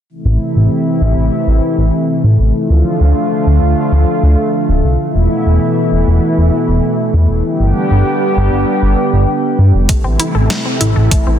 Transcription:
0.10 analog synth pad C3 E3 A3 E4
0.25 analog synth bass A1
0.56 analog synth bass A1
1.01 analog synth bass A1
1.17 analog synth bass A1
1.47 analog synth bass A1
1.78 analog synth bass A1
2.24 analog synth bass A2
2.39 analog synth bass A1
2.54 analog synth pad D3 F3 F4
2.70 analog synth bass D2
3.00 analog synth bass D2
3.46 analog synth bass D2
3.62 analog synth bass D2
3.92 analog synth bass D2
4.23 analog synth bass D2
4.69 analog synth bass D1
4.84 analog synth bass C2
5.00 analog synth pad B2 E3 E4
5.15 analog synth bass E1
5.45 analog synth bass E1
5.91 analog synth bass E1
6.07 analog synth bass E1
6.37 analog synth bass E1
6.68 analog synth bass E1
7.14 analog synth bass E2
7.29 analog synth bass E1
7.44 analog synth pad D3 G3 B3 G4
7.60 analog synth bass G1
7.90 analog synth bass G1
8.36 analog synth bass G1
8.52 analog synth bass G1
8.82 analog synth bass G1
9.13 analog synth bass G1
9.59 analog synth bass G2
9.74 analog synth bass F1
9.89 analog synth pad C3 E3 A3 E4, synth arpeggio sound A3, kick, closed hi-hat
10.04 analog synth bass A1, synth arpeggio sound C4
10.20 synth arpeggio sound E4, closed hi-hat
10.35 analog synth bass A1, synth arpeggio sound A4
10.50 synth arpeggio sound A3, snare, closed hi-hat
10.65 synth arpeggio sound C4
10.81 analog synth bass A1, synth arpeggio sound E4, closed hi-hat
10.96 analog synth bass A1, synth arpeggio sound A4
11.11 synth arpeggio sound A3, kick, closed hi-hat
11.27 analog synth bass A1, synth arpeggio sound C4

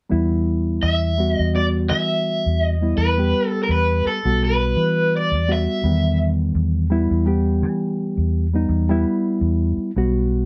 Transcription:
0.09 fingered electric bass E2, reed electric piano G3 B3 E4
0.83 fingered electric bass E2, overdriven electric guitar E5
1.18 reed electric piano G3 B3 F#4
1.35 overdriven electric guitar D#5
1.39 fingered electric bass E2
1.54 reed electric piano G3 B3 F#4, overdriven electric guitar D5
1.90 fingered electric bass E3, overdriven electric guitar E5
2.46 fingered electric bass E2
2.64 overdriven electric guitar D#5
2.81 reed electric piano G3 B3 E4
2.97 fingered electric bass E2, overdriven electric guitar B4
3.17 reed electric piano G3 B3 G4
3.47 overdriven electric guitar A4
3.63 overdriven electric guitar A#4
3.69 fingered electric bass E2, overdriven electric guitar B4
4.05 overdriven electric guitar A4, muted fingered electric bass stroke
4.25 fingered electric bass B1, reed electric piano G3 B3 F#4
4.45 overdriven electric guitar B4
4.76 fingered electric bass E3
5.17 overdriven electric guitar D5
5.31 fingered electric bass E2
5.48 reed electric piano G3 B3 F#4
5.52 overdriven electric guitar E5
5.83 fingered electric bass E2, reed electric piano D#3 G3 B3
6.55 fingered electric bass E2
6.90 reed electric piano G3 B3 E4
7.11 fingered electric bass E2
7.26 reed electric piano G3 B3 G4
7.62 fingered electric bass E3
8.17 fingered electric bass E2
8.54 reed electric piano G3 B3 D#4
8.69 fingered electric bass E2
8.89 reed electric piano G3 B3 E4
9.41 fingered electric bass E2
9.76 muted fingered electric bass stroke
9.96 fingered electric bass B1, reed electric piano G3 B3 F#4

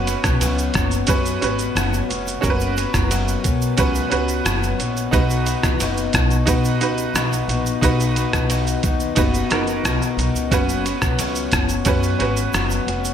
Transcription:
Already playing: upright bass F#1, upright piano C#4 F#4 B4
0.07 clean electric guitar B3 C#4 F#4, ride, shaker
0.24 upright bass B1, kick, cross-stick, shaker
0.41 upright bass C#2, clean electric guitar F#3 B3 C#4 F#4, ride, shaker
0.58 shaker
0.74 upright bass F#1, clean electric guitar C#4 F#4, kick, cross-stick, ride, shaker
0.76 clean electric guitar B3, shaker
0.91 shaker
0.93 shaker
1.07 upright bass F#2, clean electric guitar F#3 B3, upright piano C#4 F#4 B4, kick, ride, shaker
1.09 clean electric guitar C#4 F#4, shaker
1.26 shaker
1.41 upright bass G#1, clean electric guitar B3 C#4 F#4, upright piano C#4 F#4 B4, ride, shaker
1.59 shaker
1.60 shaker
1.75 upright bass F#1, clean electric guitar F#3 B3 C#4 F#4, cross-stick, ride, shaker
1.93 shaker
2.09 upright bass F1, clean electric guitar B3 C#4 F#4, ride, shaker
2.26 shaker
2.41 upright bass F#1, clean electric guitar F#3 B3 C#4, upright piano C#4 F#4 A#4, kick, ride, shaker
2.45 clean electric guitar F#4
2.50 upright piano B4
2.60 shaker
2.76 clean electric guitar B3 C#4 F#4, ride, shaker
2.94 upright bass F#1, kick, cross-stick, shaker
3.11 clean electric guitar F#3 B3 C#4 F#4, ride, shaker
3.28 shaker
3.43 upright bass B1, clean electric guitar B3 C#4 F#4, kick, ride, shaker
3.62 shaker
3.77 upright bass C#2, clean electric guitar F#3 B3 C#4 F#4, upright piano C#4 F#4 B4, kick, ride, shaker
3.95 shaker
4.10 upright bass C#2, clean electric guitar B3 C#4 F#4, upright piano C#4 F#4 B4, ride, shaker
4.28 shaker
4.45 upright bass F#1, clean electric guitar F#3 B3 C#4 F#4, cross-stick, ride, shaker
4.63 shaker
4.78 upright bass A#1, clean electric guitar B3 C#4 F#4, ride, shaker
4.97 shaker
5.11 upright bass B1, clean electric guitar B2 B3 D#4 F#4, upright piano D#4 F#4 B4, kick, ride, shaker
5.30 shaker
5.46 clean electric guitar B3 D#4 F#4, ride, shaker
5.63 upright bass D#2, kick, cross-stick, shaker
5.80 upright bass F#1, clean electric guitar B2 B3 D#4 F#4, ride, shaker
5.97 shaker
6.13 upright bass B1, clean electric guitar B3 D#4 F#4, kick, cross-stick, ride, shaker
6.31 shaker
6.46 clean electric guitar B2 B3 D#4, upright bass B2, upright piano D#4 F#4 B4, kick, ride, shaker
6.50 clean electric guitar F#4
6.65 shaker
6.80 upright bass C#2, clean electric guitar B3 D#4 F#4, upright piano D#4 F#4 B4, ride, shaker
6.98 shaker
7.14 upright bass B1, clean electric guitar B2 B3 D#4 F#4, cross-stick, ride, shaker
7.33 shaker
7.48 upright bass A#1, clean electric guitar B3 D#4 F#4, ride, shaker
7.66 shaker
7.81 upright bass B1, clean electric guitar B2 B3 D#4 F#4, upright piano D#4 F#4 B4, kick, ride, shaker
8.00 shaker
8.16 clean electric guitar B3 D#4 F#4, ride, shaker
8.33 upright bass B1, kick, cross-stick, shaker
8.49 clean electric guitar B2 B3 D#4 F#4, ride, shaker
8.67 shaker
8.83 upright bass D#2, clean electric guitar B3 D#4 F#4, kick, ride, shaker
9.00 shaker
9.15 upright bass F#1, clean electric guitar B2 B3 D#4, upright piano D#4 F#4 B4, kick, ride, shaker
9.20 clean electric guitar F#4
9.34 shaker
9.50 upright bass F#1, clean electric guitar B3 D#4 F#4, upright piano D#4 F#4 A#4, cross-stick, ride, shaker
9.67 shaker
9.69 shaker
9.84 upright bass B1, clean electric guitar B2 B3 D#4 F#4, cross-stick, ride, shaker
10.02 shaker
10.17 upright bass B1, clean electric guitar B3 D#4 F#4, ride, shaker
10.35 upright bass C#2, shaker
10.51 upright bass F#1, clean electric guitar F#3 B3 C#4 F#4, upright piano C#4 F#4 B4, kick, ride, shaker
10.69 shaker
10.86 clean electric guitar B3 C#4 F#4, ride, shaker
11.02 upright bass B1, kick, cross-stick, shaker
11.19 upright bass C#2, clean electric guitar F#3 B3 C#4 F#4, ride, shaker
11.35 shaker
11.52 upright bass F#1, clean electric guitar B3 C#4 F#4, kick, cross-stick, ride, shaker
11.69 shaker
11.85 upright bass F#2, clean electric guitar F#3 B3 C#4, upright piano C#4 F#4 B4, kick, ride, shaker
11.89 clean electric guitar F#4
12.03 shaker
12.19 upright bass G#1, clean electric guitar B3 C#4 F#4, upright piano C#4 F#4 B4, ride, shaker
12.37 shaker
12.53 upright bass F#1, clean electric guitar F#3 B3 C#4 F#4, cross-stick, ride, shaker
12.70 shaker
12.87 upright bass F1, clean electric guitar B3 C#4 F#4, ride, shaker
13.04 shaker

